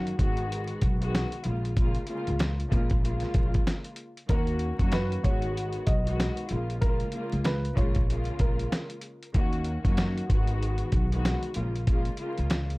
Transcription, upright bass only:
0.19 0.70 G#1 medium
0.82 1.23 B1 medium
1.45 1.96 A#1 loud
2.28 2.63 C#2 loud
2.72 3.23 A#1 loud
3.35 3.60 A#1 loud
4.29 4.70 D#2 loud
4.79 5.15 F#2 medium
5.24 5.75 G#1 medium
5.87 6.28 B1 loud
6.51 7.01 A#1 loud
7.33 7.68 C#2 loud
7.77 8.28 A#1 loud
8.40 8.65 A#1 loud
9.35 9.76 D#2 loud
9.85 10.20 F#2 medium
10.30 10.80 G#1 medium
10.93 11.33 B1 loud
11.56 12.07 A#1 loud
12.38 12.74 C#2 loud

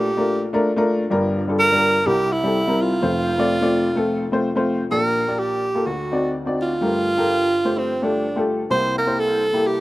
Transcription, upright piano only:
0.00 1.09 A#1 medium
0.00 1.09 A#2 medium
0.17 0.44 A3 medium
0.17 0.44 D4 medium
0.17 0.45 F4 medium
0.17 0.45 A#4 medium
0.53 0.69 A3 medium
0.53 0.70 D4 medium
0.53 0.70 F4 medium
0.53 0.70 A#4 loud
0.76 1.02 A3 medium
0.76 1.02 D4 medium
0.76 1.02 F4 medium
0.76 1.02 A#4 loud
1.10 2.03 G1 medium
1.10 2.03 G2 medium
1.10 1.38 G3 medium
1.10 1.39 D4 medium
1.10 1.39 F4 medium
1.10 1.39 A#4 loud
1.48 1.64 G3 medium
1.48 1.64 D4 medium
1.48 1.64 F4 medium
1.48 1.65 A4 medium
1.72 1.97 G3 medium
1.72 1.97 D4 medium
1.72 1.97 F4 medium
1.72 1.97 A#4 medium
2.06 2.98 C2 medium
2.06 2.98 C3 medium
2.06 2.34 G3 medium
2.06 2.34 C4 medium
2.06 2.34 E4 medium
2.06 2.34 A#4 medium
2.43 2.59 G3 medium
2.43 2.59 C4 medium
2.43 2.60 E4 medium
2.43 2.60 A4 medium
2.67 2.92 G3 medium
2.67 2.92 C4 medium
2.67 2.92 E4 medium
2.67 2.92 A#4 medium
3.01 4.88 F1 medium
3.01 4.87 F2 medium
3.01 3.29 A3 medium
3.01 3.29 C4 medium
3.01 3.29 F4 medium
3.01 3.29 C5 medium
3.38 3.54 A3 medium
3.38 3.54 C4 medium
3.38 3.54 F4 medium
3.38 3.55 D5 loud
3.61 3.86 A3 medium
3.61 3.86 C4 medium
3.61 3.87 F4 medium
3.61 3.87 D5 medium
3.95 4.23 A3 medium
3.95 4.23 C4 medium
3.95 4.23 F4 medium
3.95 4.24 A4 medium
4.32 4.48 A3 medium
4.32 4.48 C4 medium
4.32 4.48 F4 medium
4.32 4.49 C5 medium
4.55 4.80 A3 medium
4.55 4.81 C4 medium
4.55 4.81 F4 medium
4.55 4.81 C5 medium
4.90 5.82 A#1 medium
4.90 5.82 A#2 medium
4.90 5.18 A#3 medium
4.90 5.18 F4 medium
4.90 5.18 G4 medium
4.90 5.18 D5 medium
5.27 5.61 A#3 medium
5.27 5.61 F4 medium
5.27 5.61 G4 medium
5.27 5.62 D5 medium
5.75 5.86 A#3 medium
5.75 5.86 F4 medium
5.75 5.86 G4 medium
5.75 5.86 A4 medium
5.86 6.77 D2 medium
5.86 6.77 D3 medium
6.12 6.34 C4 medium
6.12 6.34 D#4 medium
6.12 6.34 F#4 medium
6.12 6.34 D5 medium
6.45 6.70 C4 medium
6.45 6.70 D#4 medium
6.45 6.71 F#4 medium
6.45 6.71 D5 medium
6.81 8.67 G1 medium
6.81 8.67 G2 medium
6.81 7.08 A3 medium
6.81 7.08 F4 medium
6.81 7.08 G4 medium
6.81 7.09 A#4 medium
7.17 7.51 F4 medium
7.17 7.51 G4 medium
7.17 7.51 A4 medium
7.17 7.51 A#4 medium
7.64 7.89 A3 medium
7.64 7.89 F4 medium
7.64 7.90 G4 medium
7.64 7.90 C5 medium
8.02 8.23 A3 medium
8.02 8.24 F4 medium
8.02 8.24 G4 medium
8.02 8.24 A4 medium
8.36 8.60 A3 medium
8.36 8.60 F4 medium
8.36 8.60 G4 medium
8.36 8.61 A4 medium
8.70 9.80 C2 medium
8.70 9.80 C3 medium
8.70 8.97 A#3 medium
8.70 8.97 E4 medium
8.70 8.97 G4 medium
8.70 8.98 C5 medium
9.06 9.40 A#3 medium
9.06 9.40 E4 medium
9.06 9.40 G4 medium
9.06 9.41 C5 medium
9.53 9.78 A#3 medium
9.53 9.78 E4 medium
9.53 9.78 G4 medium
9.53 9.79 A4 medium

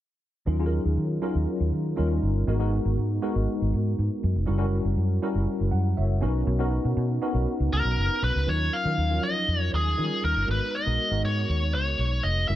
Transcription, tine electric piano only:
0.46 0.56 F#3 medium
0.46 0.56 C#4 medium
0.46 0.56 D#4 medium
0.46 0.56 F4 medium
0.46 0.56 A#4 medium
0.59 1.05 F#3 medium
0.59 1.06 C#4 medium
0.59 1.06 D#4 medium
0.59 1.06 F4 medium
0.59 0.66 G#4 medium
0.66 1.09 A#4 medium
1.22 1.96 F#3 medium
1.22 1.95 C#4 medium
1.22 1.96 D#4 medium
1.22 1.96 F4 medium
1.22 1.96 A#4 loud
1.96 2.36 G3 medium
1.96 2.37 C#4 medium
1.96 2.37 D#4 medium
1.96 2.37 F4 medium
1.96 2.37 A#4 medium
2.47 2.56 G#3 medium
2.47 2.56 B3 medium
2.47 2.57 D#4 medium
2.47 2.57 F#4 medium
2.47 2.57 A#4 medium
2.59 3.06 G#3 medium
2.59 3.06 B3 medium
2.59 3.06 D#4 medium
2.59 3.06 F#4 medium
2.59 3.06 A#4 medium
3.22 3.96 G#3 medium
3.22 3.96 B3 medium
3.22 3.96 D#4 medium
3.22 3.96 F#4 medium
3.22 3.97 A#4 medium
4.46 4.56 G3 medium
4.46 4.56 C#4 medium
4.46 4.56 E4 medium
4.46 4.56 F#4 medium
4.46 4.56 A#4 medium
4.58 5.05 G3 medium
4.58 5.05 C#4 medium
4.58 5.05 E4 medium
4.58 5.05 F#4 medium
4.58 5.06 A#4 medium
5.22 5.96 G3 medium
5.22 5.96 C#4 medium
5.22 5.97 E4 medium
5.22 5.97 F#4 medium
5.22 5.97 A#4 medium
5.71 5.96 F#5 medium
5.97 6.45 C#5 medium
5.97 6.45 E5 medium
6.21 6.52 B3 medium
6.21 6.52 C#4 medium
6.21 6.52 D#4 medium
6.21 6.52 F#4 medium
6.21 6.53 A#4 medium
6.59 7.06 B3 medium
6.59 7.06 C#4 medium
6.59 7.06 D#4 medium
6.59 7.06 F#4 medium
6.59 7.06 A#4 medium
7.22 7.96 B3 medium
7.22 7.96 C#4 medium
7.22 7.96 D#4 medium
7.22 7.96 F#4 medium
7.22 7.97 A#4 medium
8.46 8.75 F#3 medium
8.46 8.75 C#4 medium
8.46 8.75 D#4 medium
8.46 8.75 F4 medium
8.46 8.76 A#4 medium
8.85 9.04 F#3 medium
8.85 9.04 C#4 medium
8.85 9.04 D#4 medium
8.85 9.04 F4 medium
8.85 9.04 A#4 medium
9.10 9.16 F3 soft
9.10 9.84 C#4 medium
9.10 9.85 D#4 medium
9.10 9.85 F4 medium
9.10 9.85 A#4 medium
9.16 9.87 F#3 medium
9.97 10.03 F3 medium
9.97 10.38 C#4 medium
9.97 10.38 D#4 medium
9.97 10.38 F4 medium
9.97 10.38 A#4 medium
10.03 10.41 G3 medium
10.47 10.75 G#3 medium
10.47 10.75 B3 medium
10.47 10.76 D#4 medium
10.47 10.76 F#4 medium
10.47 10.76 A#4 medium
10.86 11.04 G#3 medium
10.86 11.04 B3 medium
10.86 11.05 D#4 medium
10.86 11.05 F#4 medium
10.86 11.05 A#4 medium
11.11 11.85 G#3 medium
11.11 11.85 B3 medium
11.11 11.85 D#4 medium
11.11 11.86 F#4 medium
11.11 11.85 A#4 medium
12.48 12.55 G3 medium
12.48 12.55 C#4 medium
12.48 12.55 E4 medium
12.48 12.55 F#4 medium
12.48 12.55 A#4 medium

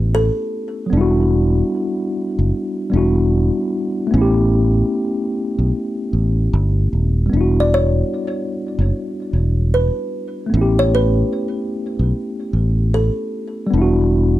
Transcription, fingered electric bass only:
0.00 0.29 A1 medium
0.93 1.61 E1 medium
2.39 2.51 F#1 medium
2.93 3.49 E1 medium
4.14 4.82 A1 loud
5.59 5.71 B1 medium
6.13 6.47 A1 medium
6.53 6.87 G1 loud
6.93 7.27 D#1 medium
7.33 8.02 E1 medium
8.79 8.91 F#1 medium
9.33 9.89 E1 medium
10.54 11.22 A1 loud
11.99 12.11 B1 medium
12.53 13.09 A1 medium
13.73 14.40 E1 medium

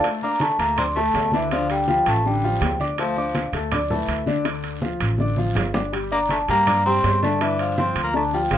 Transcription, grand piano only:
0.04 0.19 A3 medium
0.04 0.19 A4 medium
0.04 0.20 A5 medium
0.23 0.53 D4 medium
0.23 0.53 D5 medium
0.23 0.54 D6 medium
0.60 0.75 A3 medium
0.60 0.75 A4 medium
0.60 0.75 A5 medium
0.78 0.93 D4 medium
0.78 0.93 D5 medium
0.78 0.93 D6 medium
0.97 1.27 A3 medium
0.97 1.27 A4 medium
0.97 1.27 A5 medium
1.33 1.48 D3 medium
1.33 1.48 D4 medium
1.33 1.49 D5 medium
1.52 1.82 D3 medium
1.52 1.82 D4 medium
1.52 1.82 D5 medium
1.88 2.18 F3 medium
1.88 2.18 F4 medium
1.88 2.19 F5 medium
2.25 2.40 D3 medium
2.25 2.40 D4 medium
2.25 2.41 D5 medium
2.44 2.74 F3 medium
2.44 2.74 F4 medium
2.44 2.74 F5 medium
2.80 2.95 D4 medium
2.80 2.95 D5 medium
2.80 2.96 D6 medium
2.99 3.14 A3 medium
2.99 3.14 A4 medium
2.99 3.14 A5 medium
3.17 3.47 D4 medium
3.17 3.47 D5 medium
3.17 3.48 D6 medium
3.54 3.69 A3 medium
3.54 3.69 A4 medium
3.54 3.69 A5 medium
3.72 3.87 D4 medium
3.72 3.87 D5 medium
3.72 3.87 D6 medium
3.90 4.21 A3 medium
3.90 4.21 A4 medium
3.90 4.21 A5 medium
4.27 4.42 D3 medium
4.27 4.42 D4 medium
4.27 4.43 D5 medium
4.45 4.75 D3 medium
4.45 4.76 D4 medium
4.45 4.76 D5 medium
4.83 5.13 F3 medium
4.83 5.13 F4 medium
4.83 5.13 F5 medium
5.20 5.35 D3 medium
5.20 5.35 D4 medium
5.20 5.35 D5 medium
5.38 5.68 F3 medium
5.38 5.68 F4 medium
5.38 5.68 F5 medium
5.74 5.89 D4 medium
5.74 5.89 D5 medium
5.74 5.90 D6 medium
5.92 6.08 G3 medium
5.92 6.08 G4 medium
5.92 6.08 G5 medium
6.12 6.42 D4 medium
6.12 6.42 D5 medium
6.12 6.42 D6 medium
6.49 6.64 G3 medium
6.49 6.64 G4 medium
6.49 6.64 G5 medium
6.67 6.82 D4 medium
6.67 6.82 D5 medium
6.67 6.82 D6 medium
6.86 7.16 G3 medium
6.86 7.16 G4 medium
6.86 7.17 G5 medium
7.23 7.38 D3 medium
7.23 7.38 D4 medium
7.23 7.38 D5 medium
7.41 7.71 D3 medium
7.41 7.71 D4 medium
7.41 7.71 D5 medium
7.78 8.08 F3 medium
7.78 8.08 F4 medium
7.78 8.08 F5 medium
8.14 8.29 D3 medium
8.14 8.29 D4 medium
8.14 8.30 D5 medium
8.33 8.58 F3 medium
8.33 8.58 F4 medium
8.33 8.58 F5 medium

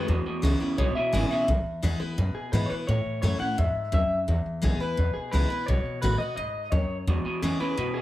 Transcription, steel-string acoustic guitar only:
0.08 0.75 E2 medium
0.42 0.60 E3 medium
0.42 0.60 G#3 loud
0.42 0.60 B3 medium
0.42 0.59 E4 loud
0.60 0.79 B3 soft
0.60 0.77 E4 medium
0.78 1.45 B2 loud
1.12 1.30 E3 medium
1.12 1.30 G#3 medium
1.12 1.30 B3 medium
1.12 1.29 E4 loud
1.31 1.49 B3 medium
1.31 1.48 E4 medium
1.48 2.15 E2 medium
1.82 2.00 E3 medium
1.82 2.00 G#3 medium
1.82 2.01 B3 loud
1.82 1.98 E4 medium
2.00 2.18 B3 medium
2.00 2.17 E4 medium
2.18 2.85 B2 medium
2.53 2.70 E3 medium
2.53 2.70 G#3 medium
2.53 2.70 B3 medium
2.53 2.69 E4 medium
2.70 2.88 B3 soft
2.70 2.87 E4 medium
2.89 3.55 A2 medium
3.22 3.40 E3 medium
3.22 3.40 A3 medium
3.22 3.40 C#4 medium
3.22 3.38 E4 medium
3.39 3.58 C#4 medium
3.39 3.57 E4 medium
3.58 3.91 G#2 medium
3.92 4.26 F#2 medium
4.28 4.94 E2 medium
4.62 4.79 E3 medium
4.62 4.80 G#3 medium
4.62 4.80 B3 loud
4.62 4.79 E4 medium
4.80 4.98 B3 medium
4.80 4.97 E4 medium
4.97 5.64 B2 medium
5.33 5.50 E3 medium
5.33 5.50 G#3 medium
5.33 5.50 B3 medium
5.33 5.49 E4 medium
5.50 5.68 B3 medium
5.50 5.67 E4 medium
5.68 6.35 B2 medium
6.02 6.19 D#3 loud
6.02 6.20 A3 loud
6.02 6.20 B3 medium
6.02 6.19 F#4 medium
6.20 6.38 B3 medium
6.20 6.37 F#4 medium
6.37 6.71 G#2 medium
6.72 7.06 F#2 medium
7.07 7.74 E2 medium
7.42 7.59 E3 loud
7.42 7.60 G#3 medium
7.42 7.60 B3 loud
7.42 7.59 E4 medium
7.60 7.78 B3 soft
7.60 7.77 E4 medium
7.77 8.02 B2 medium

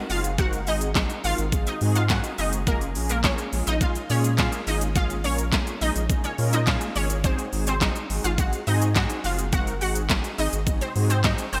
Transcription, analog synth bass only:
0.10 0.68 F#1 loud
0.67 1.06 G#1 medium
1.24 1.34 G#1 loud
1.38 1.68 G#1 medium
1.81 2.20 G#2 medium
2.38 2.97 F#1 loud
2.96 3.35 A#1 medium
3.53 3.62 A#1 loud
3.67 3.96 A#1 medium
4.10 4.49 A#2 loud
4.67 5.26 G#1 loud
5.24 5.63 A#1 loud
5.81 5.91 A#1 loud
5.96 6.25 A#1 medium
6.38 6.78 A#2 medium
6.96 7.35 G#1 loud
7.53 7.92 G#1 medium
8.10 8.20 G#1 loud
8.24 8.53 G#1 medium
8.67 9.06 G#2 medium
9.24 9.83 F#1 loud
9.81 10.20 G#1 medium
10.38 10.48 G#1 medium
10.53 10.82 G#1 medium
10.96 11.35 G#2 medium
11.53 11.60 F#1 loud

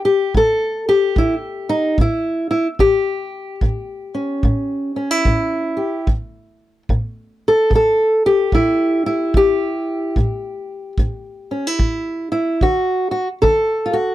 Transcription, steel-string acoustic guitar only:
0.00 0.28 A2 medium
0.05 0.35 G4 medium
0.35 1.10 A2 medium
0.35 0.87 A4 loud
0.89 1.99 G4 medium
1.16 1.92 A2 medium
1.16 1.34 E4 medium
1.69 1.99 D#4 medium
1.98 2.74 A2 medium
1.98 2.49 E4 medium
2.51 2.67 E4 medium
2.79 3.55 A2 medium
2.79 5.76 G4 medium
3.62 4.37 A2 medium
4.14 4.96 C#4 soft
4.44 5.19 A2 medium
4.96 5.11 C#4 soft
5.11 6.07 E4 soft
5.26 6.01 A2 medium
5.77 6.10 G4 soft
6.07 6.82 A2 medium
6.90 7.65 A2 medium
7.48 7.73 A4 medium
7.70 8.46 A2 medium
7.75 8.24 A4 medium
8.26 9.36 G4 medium
8.53 9.28 A2 medium
8.53 9.05 E4 loud
9.06 10.17 E4 medium
9.34 10.10 A2 medium
9.34 12.62 G4 loud
10.17 10.92 A2 medium
10.99 11.74 A2 medium
11.51 11.67 C#4 soft
11.67 12.31 E4 soft
11.79 12.55 A2 medium
12.32 12.62 E4 medium
12.62 13.38 D3 medium
12.62 13.10 F#4 medium
13.11 13.27 F#4 medium
13.42 14.15 D3 medium
13.42 13.93 A4 medium
13.86 13.95 F4 medium
13.93 14.15 F#4 medium

